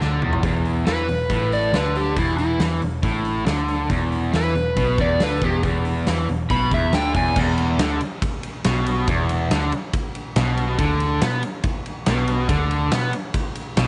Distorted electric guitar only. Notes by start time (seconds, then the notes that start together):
0.00 D3
0.21 E2
0.43 E2
0.86 E3
1.09 E2
1.30 A2
1.73 D3
2.17 E2
2.60 E3
2.81 E2
3.03 A2
3.46 D3
3.90 E2
4.33 E3
4.55 E2
4.77 B2
4.99 E2
5.20 D3
5.42 E2
5.64 E2
6.07 E3
6.29 E2
6.51 B2
6.72 E2
6.94 D3
7.15 E2
7.36 E2
7.79 D3
8.65 B2
9.08 E2
9.51 D3
10.37 B2
10.79 D3
11.21 B3
12.07 B2
12.49 D3
12.92 B3
13.77 B2